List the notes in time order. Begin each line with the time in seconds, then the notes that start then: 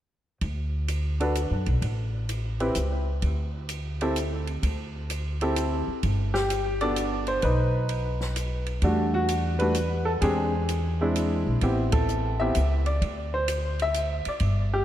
0.41 D2, kick, ride
0.88 hi-hat pedal, ride
1.20 D4 F#4 A4 B4, ride
1.35 hi-hat pedal, ride
1.51 F#2
1.66 B1, ride
1.82 A1, kick, ride
2.29 hi-hat pedal, ride
2.60 C4 E4 G4 B4, ride
2.75 C#2, hi-hat pedal, ride
3.22 D2, kick, ride
3.69 hi-hat pedal, ride
4.01 C4 E4 G4 A4, ride
4.16 hi-hat pedal, ride
4.47 ride
4.63 D2, kick, ride
5.10 hi-hat pedal, ride
5.41 C4 E4 G4 A4, ride
5.56 hi-hat pedal, ride
5.88 muted upright bass stroke
6.03 G1, kick, ride
6.34 G4, snare
6.50 hi-hat pedal, ride
6.81 B3 D4 F#4 A4 D5, ride
6.96 hi-hat pedal, ride
7.27 C5, ride
7.42 B1 D#4 B4, kick, ride
7.89 ride
8.21 snare
8.36 hi-hat pedal, ride
8.66 ride
8.82 E2 G3 A3 D4 F#4, kick, ride
9.14 F#4
9.28 hi-hat pedal, ride
9.59 G3 A3 D4 F#4 B4, ride
9.75 hi-hat pedal, ride
10.05 A4
10.21 E2 G#3 C4 D4 G4 G#4, kick, ride
10.69 hi-hat pedal, ride
11.01 G#3 C4 D4 E4
11.16 hi-hat pedal, ride
11.46 A#1
11.61 A1 B3 C4 E4 G4, kick, ride
11.92 A4, kick, ride
12.09 hi-hat pedal
12.40 B3 C4 E4 G4 E5
12.55 C#2, hi-hat pedal, ride
12.86 D5, ride
13.02 D2, kick, ride
13.34 C5
13.48 hi-hat pedal, ride
13.79 E5, ride
13.94 hi-hat pedal, ride
14.25 D5, muted upright bass stroke, ride
14.40 G1, kick, ride
14.74 G4